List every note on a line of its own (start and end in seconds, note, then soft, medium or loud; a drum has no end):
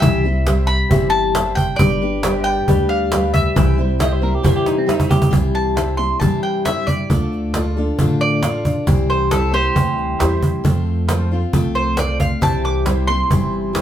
0.00 0.81 C2 medium
0.00 0.24 C3 medium
0.00 0.24 E3 medium
0.00 0.24 G3 medium
0.00 0.24 C4 medium
0.00 0.24 E4 medium
0.00 0.23 C5 medium
0.00 0.69 E5 loud
0.00 cajon bass loud
0.24 0.45 G3 soft
0.24 0.46 C4 medium
0.24 0.47 E4 medium
0.24 0.46 C5 medium
0.24 cajon slap soft
0.46 0.91 G3 medium
0.46 0.90 C4 medium
0.46 0.90 E4 medium
0.46 0.74 G4 medium
0.46 0.74 C5 medium
0.46 0.91 C5 medium
0.46 0.75 E5 medium
0.46 cajon slap loud
0.67 1.09 B5 loud
0.67 cajon slap soft
0.89 1.69 G1 medium
0.89 1.35 C3 medium
0.89 1.35 E3 medium
0.89 1.35 G3 medium
0.89 1.35 C4 medium
0.89 1.35 E4 medium
0.89 1.18 G4 medium
0.89 1.18 C5 medium
0.89 1.36 C5 medium
0.89 1.19 E5 medium
0.89 cajon bass loud
1.10 1.55 A5 loud
1.10 cajon slap soft
1.34 1.79 G3 medium
1.34 1.80 C4 medium
1.34 1.80 E4 medium
1.34 1.62 G4 medium
1.34 1.63 C5 medium
1.34 1.80 C5 medium
1.34 1.63 E5 medium
1.34 cajon slap loud
1.55 1.79 G5 loud
1.55 cajon bass medium
1.76 2.57 G1 medium
1.76 2.01 G3 medium
1.76 2.02 D4 medium
1.76 2.46 D5 medium
1.76 cajon bass loud
1.81 2.01 G4 medium
1.81 2.00 B4 medium
2.01 2.23 D4 soft
2.01 2.24 G4 soft
2.01 2.24 B4 medium
2.01 cajon slap soft
2.23 2.67 G3 medium
2.23 2.67 D4 medium
2.23 2.51 G4 medium
2.23 2.68 G4 medium
2.23 2.52 B4 medium
2.23 2.68 B4 medium
2.23 2.44 C5 medium
2.23 2.52 D5 medium
2.23 2.50 E5 medium
2.23 3.56 G5 medium
2.23 cajon slap loud
2.44 3.55 B4 medium
2.44 2.90 G5 loud
2.44 cajon slap soft
2.50 3.56 D5 medium
2.67 3.46 D2 medium
2.67 3.12 G3 medium
2.67 3.12 D4 medium
2.67 2.95 G4 medium
2.67 3.13 G4 medium
2.67 2.96 B4 medium
2.67 3.13 B4 medium
2.67 2.96 D5 medium
2.67 cajon bass loud
2.89 3.31 F5 medium
3.12 3.56 G3 medium
3.12 3.56 D4 medium
3.12 3.40 G4 medium
3.12 3.56 G4 medium
3.12 3.40 B4 medium
3.12 3.57 B4 medium
3.12 3.40 D5 medium
3.12 cajon slap loud
3.34 4.85 E5 medium
3.34 cajon bass medium
3.56 4.34 C2 medium
3.56 3.78 C3 medium
3.56 3.78 E3 medium
3.56 3.78 G3 medium
3.56 3.78 C4 medium
3.56 3.77 E4 medium
3.56 3.77 B4 medium
3.56 3.76 C5 medium
3.56 5.33 E5 medium
3.56 5.33 G5 medium
3.56 cajon bass loud
3.77 3.98 G3 soft
3.77 3.99 C4 medium
3.77 3.99 E4 medium
3.77 5.32 C5 medium
3.77 4.00 C5 medium
3.77 cajon slap soft
3.99 4.22 G3 medium
3.99 4.21 C4 medium
3.99 4.21 E4 medium
3.99 4.28 G4 medium
3.99 4.28 C5 medium
3.99 4.20 C5 medium
3.99 4.13 D#5 loud
3.99 4.29 E5 medium
3.99 cajon slap loud
4.13 4.23 C5 medium
4.22 4.43 G3 medium
4.22 4.43 C4 medium
4.22 4.43 E4 medium
4.22 4.35 A#4 medium
4.22 4.43 C5 medium
4.22 cajon slap soft
4.35 4.46 G4 medium
4.43 5.23 G2 medium
4.43 4.88 C3 medium
4.43 4.89 E3 medium
4.43 4.85 G3 medium
4.43 4.86 C4 medium
4.43 4.87 E4 medium
4.43 4.72 G4 medium
4.43 4.56 A#4 medium
4.43 4.72 C5 medium
4.43 4.88 C5 medium
4.43 4.73 G5 loud
4.43 cajon bass loud
4.43 cajon slap medium
4.56 4.67 G4 medium
4.66 4.77 D#4 medium
4.66 cajon slap medium
4.78 4.89 C4 medium
4.86 5.10 G3 medium
4.86 5.10 C4 medium
4.86 5.09 E4 medium
4.86 5.16 G4 medium
4.86 5.16 C5 medium
4.86 5.08 C5 medium
4.86 5.16 E5 medium
4.86 cajon slap medium
4.91 5.11 D#4 medium
5.00 cajon bass medium
5.09 5.30 G3 soft
5.09 5.30 C4 soft
5.09 5.30 E4 medium
5.09 5.32 G4 medium
5.09 5.30 C5 medium
5.09 cajon bass loud
5.22 cajon bass medium
5.30 6.11 C2 medium
5.30 5.76 C3 medium
5.30 5.76 E3 medium
5.30 5.75 G3 medium
5.30 5.75 C4 medium
5.30 5.76 E4 medium
5.30 5.77 C5 medium
5.30 cajon bass loud
5.55 5.97 A5 medium
5.55 cajon slap soft
5.75 5.98 G3 medium
5.75 5.98 C4 medium
5.75 5.97 E4 medium
5.75 6.04 G4 medium
5.75 6.05 C5 medium
5.75 5.96 C5 medium
5.75 6.05 E5 medium
5.75 cajon slap loud
5.97 6.20 G3 soft
5.97 6.21 C4 soft
5.97 6.21 E4 soft
5.97 6.21 C5 medium
5.97 6.19 C6 medium
6.20 7.00 G2 medium
6.20 6.66 C3 medium
6.20 6.66 E3 medium
6.20 6.65 G3 medium
6.20 6.66 C4 medium
6.20 6.66 E4 medium
6.20 6.66 C5 medium
6.20 6.42 A5 medium
6.20 cajon bass loud
6.43 6.65 G5 medium
6.43 cajon slap soft
6.65 6.88 G3 medium
6.65 6.89 C4 medium
6.65 6.88 E4 medium
6.65 6.93 G4 medium
6.65 6.93 C5 medium
6.65 6.87 C5 medium
6.65 6.87 E5 medium
6.65 6.94 E5 medium
6.65 cajon slap loud
6.87 7.10 G3 soft
6.87 7.10 C4 soft
6.87 7.11 E4 soft
6.87 7.10 C5 soft
6.87 7.73 D5 medium
6.87 cajon bass medium
7.10 7.88 D2 medium
7.10 7.54 D3 medium
7.10 7.53 A3 medium
7.10 7.54 D4 medium
7.10 7.55 F4 medium
7.10 7.55 A4 medium
7.10 cajon bass loud
7.32 cajon slap soft
7.54 7.77 A3 medium
7.54 7.77 D4 medium
7.54 7.82 F4 medium
7.54 7.77 F4 medium
7.54 7.82 A4 medium
7.54 7.76 A4 medium
7.54 7.83 D5 medium
7.54 cajon slap loud
7.76 7.99 D4 soft
7.76 7.99 F4 medium
7.76 7.99 A4 medium
7.76 cajon slap soft
7.99 8.77 A1 medium
7.99 8.43 D3 medium
7.99 8.41 A3 medium
7.99 8.41 D4 medium
7.99 8.43 F4 medium
7.99 8.43 A4 medium
7.99 cajon bass loud
8.21 9.07 D5 loud
8.21 cajon slap soft
8.42 8.65 A3 medium
8.42 8.65 D4 medium
8.42 8.71 F4 medium
8.42 8.65 F4 medium
8.42 8.71 A4 medium
8.42 8.64 A4 medium
8.42 8.71 F5 medium
8.42 cajon slap loud
8.65 8.87 D4 soft
8.65 8.87 F4 soft
8.65 8.87 A4 medium
8.65 cajon bass medium
8.87 9.66 C2 medium
8.87 9.31 C3 medium
8.87 9.32 E3 medium
8.87 9.29 G3 medium
8.87 9.31 C4 medium
8.87 9.31 E4 loud
8.87 9.32 C5 medium
8.87 cajon bass loud
9.09 9.31 C5 medium
9.09 cajon slap soft
9.30 9.53 G3 medium
9.30 9.52 C4 medium
9.30 9.59 E4 medium
9.30 9.52 E4 medium
9.30 9.60 G4 medium
9.30 9.53 A4 medium
9.30 9.60 C5 medium
9.30 9.50 C5 medium
9.30 cajon slap loud
9.52 9.75 G3 soft
9.52 9.75 C4 soft
9.52 9.76 E4 soft
9.52 10.83 G4 medium
9.52 9.75 C5 medium
9.52 10.83 C5 loud
9.75 10.14 D2 medium
9.75 10.20 C3 medium
9.75 10.20 E3 medium
9.75 10.19 G3 medium
9.75 10.20 C4 medium
9.75 10.20 E4 medium
9.75 10.22 C5 medium
9.75 cajon bass loud
9.98 cajon slap soft
10.19 10.58 E2 medium
10.19 10.64 G3 medium
10.19 10.64 C4 medium
10.19 10.47 E4 medium
10.19 10.64 E4 medium
10.19 10.48 G4 medium
10.19 10.48 C5 medium
10.19 10.65 C5 medium
10.19 cajon slap loud
10.43 cajon bass medium
10.64 11.43 F2 medium
10.64 11.08 F3 medium
10.64 11.08 A3 medium
10.64 11.10 C4 medium
10.64 11.09 F4 medium
10.64 11.11 C5 medium
10.64 cajon bass loud
10.87 cajon slap soft
11.08 11.31 A3 medium
11.08 11.32 C4 medium
11.08 11.36 F4 medium
11.08 11.32 F4 medium
11.08 11.36 A4 medium
11.08 11.37 C5 medium
11.08 11.30 C5 medium
11.08 cajon slap loud
11.31 11.53 C4 soft
11.31 11.53 F4 medium
11.31 11.53 C5 medium
11.31 cajon slap soft
11.53 12.32 C2 medium
11.53 11.98 F3 medium
11.53 11.96 A3 medium
11.53 11.97 C4 medium
11.53 11.98 F4 medium
11.53 11.98 C5 medium
11.53 cajon bass loud
11.75 11.97 C5 medium
11.75 cajon slap soft
11.97 12.41 A3 medium
11.97 12.41 C4 medium
11.97 12.25 F4 medium
11.97 12.42 F4 medium
11.97 12.26 A4 medium
11.97 12.26 C5 medium
11.97 12.42 C5 medium
11.97 12.20 D5 medium
11.97 cajon slap loud
12.20 12.42 F5 medium
12.20 cajon bass medium
12.41 13.20 C2 medium
12.41 12.86 C3 medium
12.41 12.86 E3 medium
12.41 12.85 G3 medium
12.41 12.85 C4 medium
12.41 12.86 E4 medium
12.41 12.87 C5 medium
12.41 13.82 C5 medium
12.41 13.82 E5 medium
12.41 13.82 G5 medium
12.41 12.64 A5 medium
12.41 cajon bass loud
12.64 13.07 D6 medium
12.64 cajon slap soft
12.85 13.08 G3 medium
12.85 13.08 C4 medium
12.85 13.14 E4 medium
12.85 13.08 E4 medium
12.85 13.14 G4 medium
12.85 13.15 C5 medium
12.85 13.07 C5 medium
12.85 cajon slap loud
13.07 13.31 G3 soft
13.07 13.30 C4 medium
13.07 13.31 E4 medium
13.07 13.30 C5 medium
13.07 13.82 C6 medium
13.31 13.82 G1 medium
13.31 13.75 C3 medium
13.31 13.75 E3 medium
13.31 13.72 G3 medium
13.31 13.74 C4 medium
13.31 13.74 E4 medium
13.31 13.74 C5 medium
13.31 cajon bass loud
13.53 cajon slap soft
13.73 13.82 G3 medium
13.73 13.82 C4 medium
13.73 13.82 E4 medium
13.73 13.82 G4 medium
13.73 13.82 C5 medium
13.73 13.82 C5 loud
13.73 cajon slap loud